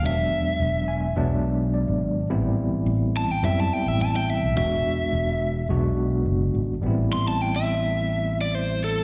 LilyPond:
<<
  \new Staff \with { instrumentName = "Overdriven electric guitar" } { \time 4/4 \key a \dorian \tempo 4 = 106 e''2 r2 | r4. a''16 g''16 e''16 a''16 g''16 e''16 a''16 g''16 e''8 | e''2 r2 | r8 c'''16 a''16 g''16 e''4. d''16 c''8 a'8 | }
  \new Staff \with { instrumentName = "Tine electric piano" } { \time 4/4 \key a \dorian r4. gis''8 e''4 d''4 | r1 | r1 | r1 | }
  \new Staff \with { instrumentName = "Tine electric piano" } { \time 4/4 \key a \dorian <fis gis b d'>2 <fis gis b d'>2 | <g b c' e'>2 <g b c' e'>2 | <gis b d' fis'>2 <gis b d' fis'>2 | <g b c' e'>1 | }
  \new Staff \with { instrumentName = "Fingered electric bass" } { \clef bass \time 4/4 \key a \dorian e,,8 r8 e,,4 b,,4~ b,,16 gis,,8. | a,,8. r16 a,,8. r16 fis,8 r16 a,,4 b,,16 | e,,8 r8 e,,4 b,,4 fis,,8 gis,,8 | a,,1 | }
>>